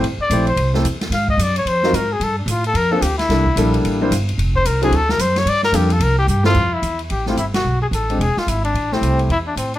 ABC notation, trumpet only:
X:1
M:4/4
L:1/8
Q:"Swing" 1/4=220
K:F
V:1 name="Trumpet"
z d2 c2 z3 | f _e d _d c2 B _A | A D F A B A G E- | E4 z4 |
z c B _A =A B c _d | d B G A B G G F- | F E2 z G F E _G- | _G _A =A2 ^G F E D- |
D C2 z E D C D |]